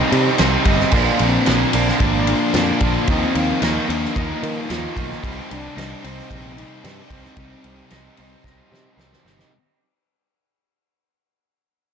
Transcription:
Already playing: overdriven electric guitar C3 G3 C4 D#4, clean electric guitar G3, distorted electric guitar G3 C4
0.12 picked electric bass C3, distorted electric guitar G3 C4, ride
0.38 picked electric bass C2, overdriven electric guitar C3 G3 C4 D#4, snare, ride
0.65 picked electric bass G1, overdriven electric guitar C3 G3 C4 D#4, kick, ride
0.80 snare
0.91 picked electric bass A#1, overdriven electric guitar A#2 D3 F3 A#3 D4, kick, crash
1.19 picked electric bass A#1, distorted electric guitar F3 A#3, soft synth lead C4, ride
1.46 picked electric bass A#1, overdriven electric guitar A#2 D3 F3 A#3 D4, snare, ride
1.73 picked electric bass A#1, overdriven electric guitar A#2 D3 F3 A#3 D4, soft synth lead A#3, ride
1.89 snare
2.00 picked electric bass G#1, overdriven electric guitar A#2 D3 F3 A#3 D4, kick, ride
2.27 distorted electric guitar F3 A#3, soft synth lead D4, ride
2.54 picked electric bass F2, overdriven electric guitar A#2 D3 F3 A#3 D4, snare, ride
2.80 picked electric bass A#1, overdriven electric guitar A#2 D3 F3 A#3 D4, soft synth lead D4, kick, ride
3.07 picked electric bass D#2, overdriven electric guitar D#3 F3 A#3 D#4, soft synth lead C4, kick, ride
3.34 picked electric bass D#2, distorted electric guitar A#3 D#4, ride
3.61 picked electric bass D#2, overdriven electric guitar D#3, soft synth lead A#3, clean electric guitar D#4, snare, ride
3.65 overdriven electric guitar D#3 F3 A#3 D#4
3.88 picked electric bass D#2, overdriven electric guitar D#3 F3 D#4, soft synth lead D4, ride
3.92 overdriven electric guitar A#3 D#4
4.05 snare
4.16 picked electric bass D#2, overdriven electric guitar D#3 F3 A#3 D#4, soft synth lead D#4, kick, ride
4.42 picked electric bass D#3, clean electric guitar F3, distorted electric guitar A#3 D#4, ride
4.70 picked electric bass D#2, overdriven electric guitar D#3 F3 A#3 D#4, soft synth lead F4, snare, ride
4.95 picked electric bass B1, overdriven electric guitar D#3 F3 A#3 D#4, kick, ride
4.99 overdriven electric guitar D#4
5.11 snare
5.24 picked electric bass C2, overdriven electric guitar C3 G3 C4 D#4, kick, ride
5.50 picked electric bass C2, distorted electric guitar G3 C4, soft synth lead D4, ride
5.77 picked electric bass C2, overdriven electric guitar C3 G3 C4 D#4, snare, ride
6.04 picked electric bass C2, overdriven electric guitar C3 G3 C4 D#4, soft synth lead C4, ride
6.20 snare
6.30 picked electric bass A#1, overdriven electric guitar C3 G3 C4 D#4, kick, ride
6.57 distorted electric guitar G3 C4, soft synth lead D#4, ride
6.83 picked electric bass G2, overdriven electric guitar C3 G3 C4 D#4, soft synth lead D4, snare, ride
7.10 picked electric bass C2, overdriven electric guitar C3 G3 C4 D#4, soft synth lead C4, kick, ride
7.24 snare
7.37 picked electric bass C2, overdriven electric guitar C3 G3 C4 D#4, kick, ride
7.64 picked electric bass C2, distorted electric guitar G3 C4, ride
7.90 picked electric bass C2, overdriven electric guitar C3 G3 C4 D#4, snare, ride
8.17 picked electric bass C2, overdriven electric guitar C3 D#4, ride
8.21 overdriven electric guitar G3 C4 D#4
8.44 picked electric bass C2, overdriven electric guitar C3 G3 C4 D#4, kick, snare
8.71 picked electric bass C3, distorted electric guitar G3 C4, snare
8.97 picked electric bass C2, overdriven electric guitar C3 G3 C4 D#4, snare
9.13 snare
9.25 picked electric bass G1, overdriven electric guitar C3 G3 C4 D#4, snare
9.39 snare

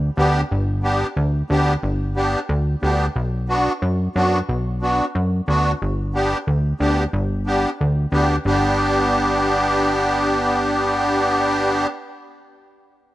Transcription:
Already playing: analog synth bass D2
0.17 analog synth bass D2, accordion B3 D4 G4
0.51 analog synth bass G1
0.83 accordion B3 D4 G4
1.17 analog synth bass D2
1.50 analog synth bass D2, accordion B3 D4 G4
1.83 analog synth bass G1
2.16 accordion B3 D4 G4
2.49 analog synth bass D2
2.82 analog synth bass D2, accordion B3 D4 G4
3.16 analog synth bass B1
3.49 accordion B3 D4 F#4
3.82 analog synth bass F#2
4.15 analog synth bass F#2, accordion B3 D4 F#4
4.49 analog synth bass B1
4.81 accordion B3 D4 F#4
5.15 analog synth bass F#2
5.48 analog synth bass D2, accordion B3 D4 F#4
5.82 analog synth bass G1
6.14 accordion B3 D4 G4
6.47 analog synth bass D2
6.80 analog synth bass D2, accordion B3 D4 G4
7.13 analog synth bass G1
7.47 accordion B3 D4 G4
7.81 analog synth bass D2
8.12 analog synth bass D2, accordion B3 D4 G4
8.45 analog synth bass G1, accordion B3 D4 G4

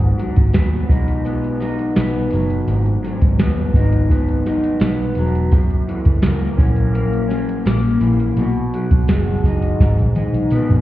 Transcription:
Already playing: fingered electric bass G#1, clean electric guitar G#2 F#3 B3 D#4
0.01 closed hi-hat
0.18 clean electric guitar F#3, closed hi-hat
0.36 fingered electric bass G#1, kick, closed hi-hat
0.53 fingered electric bass D#2, clean electric guitar B3, snare, closed hi-hat, tambourine
0.89 fingered electric bass B1, clean electric guitar D#4, kick, closed hi-hat, tambourine
1.08 closed hi-hat
1.25 clean electric guitar B3, closed hi-hat, tambourine
1.44 closed hi-hat
1.60 clean electric guitar D#4, snare, closed hi-hat, tambourine
1.79 closed hi-hat
1.96 fingered electric bass B1, clean electric guitar B3, snare, closed hi-hat, tambourine
2.31 fingered electric bass F#1, clean electric guitar F#3, closed hi-hat, tambourine
2.50 closed hi-hat
2.68 fingered electric bass G#1, clean electric guitar G#2, closed hi-hat, tambourine
2.86 closed hi-hat
3.03 clean electric guitar F#3, closed hi-hat, tambourine
3.21 fingered electric bass G#1, kick, closed hi-hat
3.38 fingered electric bass D#2, clean electric guitar B3, snare, closed hi-hat, tambourine
3.74 fingered electric bass G#1, clean electric guitar D#4, kick, closed hi-hat, tambourine
3.92 closed hi-hat
4.10 clean electric guitar B3, kick, closed hi-hat, tambourine
4.28 closed hi-hat
4.46 clean electric guitar D#4, snare, closed hi-hat, tambourine
4.64 closed hi-hat
4.80 fingered electric bass B1, clean electric guitar B3, snare, closed hi-hat, tambourine
5.15 fingered electric bass E1, clean electric guitar F#3, closed hi-hat, tambourine
5.35 closed hi-hat
5.51 fingered electric bass F#1, clean electric guitar F#2, kick, closed hi-hat, tambourine
5.71 closed hi-hat
5.88 clean electric guitar E3, closed hi-hat
6.05 fingered electric bass F#1, kick, closed hi-hat
6.22 fingered electric bass C#2, clean electric guitar A#3, snare, closed hi-hat, tambourine
6.58 fingered electric bass A#1, clean electric guitar C#4, kick, closed hi-hat, tambourine
6.76 closed hi-hat
6.93 clean electric guitar A#3, closed hi-hat
7.13 closed hi-hat
7.28 clean electric guitar C#4, snare, closed hi-hat, tambourine
7.49 closed hi-hat
7.65 fingered electric bass A#1, clean electric guitar A#3, snare, closed hi-hat, tambourine
8.01 fingered electric bass A#1, clean electric guitar E3, closed hi-hat, tambourine
8.20 closed hi-hat
8.37 fingered electric bass B1, clean electric guitar B2, closed hi-hat, tambourine
8.74 clean electric guitar F#3, closed hi-hat
8.91 fingered electric bass B1, kick, closed hi-hat
9.08 fingered electric bass F#1, clean electric guitar G#3, snare, closed hi-hat, tambourine
9.44 fingered electric bass F#1, clean electric guitar D#4, kick, closed hi-hat, tambourine
9.62 closed hi-hat
9.80 fingered electric bass G#1, clean electric guitar G#2, kick, snare, closed hi-hat
9.97 fingered electric bass A#1, closed hi-hat
10.15 clean electric guitar D#4, closed hi-hat, high tom, tambourine
10.33 fingered electric bass B1, closed hi-hat
10.50 clean electric guitar B3, closed hi-hat, mid tom, tambourine
10.69 fingered electric bass A#1, closed hi-hat, mid tom

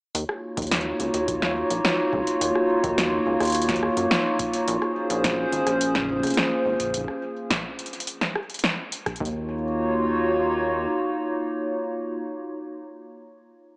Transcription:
0.15 analog synth bass D#2, ambient pad A#3 D#4 F4 F#4 C#5, closed hi-hat
0.29 cross-stick
0.57 analog synth bass D#2, kick, closed hi-hat
0.62 closed hi-hat
0.67 closed hi-hat
0.72 snare, closed hi-hat
0.81 closed hi-hat
1.00 analog synth bass C#2, closed hi-hat
1.14 analog synth bass D#2, closed hi-hat
1.28 kick, closed hi-hat
1.42 snare
1.70 analog synth bass A#1, closed hi-hat
1.85 cross-stick, snare
2.13 analog synth bass C#2, kick
2.27 closed hi-hat
2.41 analog synth bass D#2, closed hi-hat
2.55 cross-stick
2.84 analog synth bass D#2, kick, closed hi-hat
2.98 snare, closed hi-hat
3.26 analog synth bass C#2
3.40 analog synth bass D#2, cross-stick, closed hi-hat
3.43 closed hi-hat
3.45 closed hi-hat
3.47 closed hi-hat
3.50 closed hi-hat
3.52 closed hi-hat
3.55 closed hi-hat
3.62 closed hi-hat
3.69 kick, snare, closed hi-hat
3.76 closed hi-hat
3.83 cross-stick
3.97 analog synth bass F#2, closed hi-hat
4.11 snare
4.39 kick, closed hi-hat
4.53 closed hi-hat
4.67 analog synth bass A#1, ambient pad C#4 G#4 C5, closed hi-hat
4.82 cross-stick
5.10 analog synth bass A#1, closed hi-hat
5.24 kick, snare, closed hi-hat
5.53 analog synth bass G#1, closed hi-hat
5.67 analog synth bass A#1, cross-stick, closed hi-hat
5.81 closed hi-hat
5.95 kick, snare
5.98 kick
6.02 kick
6.06 kick
6.09 kick
6.13 kick
6.16 kick
6.20 analog synth bass F1, kick, cross-stick, closed hi-hat
6.27 closed hi-hat
6.30 closed hi-hat
6.34 snare, closed hi-hat
6.66 analog synth bass G#1
6.80 kick, closed hi-hat
6.83 kick
6.87 kick
6.90 kick
6.94 kick, closed hi-hat
6.97 kick
7.01 kick
7.05 kick, cross-stick
7.51 kick, snare, closed hi-hat
7.79 closed hi-hat
7.86 closed hi-hat
7.93 closed hi-hat
8.00 closed hi-hat
8.07 closed hi-hat
8.21 snare
8.36 cross-stick
8.50 closed hi-hat
8.54 closed hi-hat
8.59 closed hi-hat
8.64 snare
8.92 closed hi-hat
9.06 kick, cross-stick, closed hi-hat
9.16 closed hi-hat
9.20 analog synth bass D#2, ambient pad A#3 D#4 F4 F#4 C#5, kick
9.25 closed hi-hat

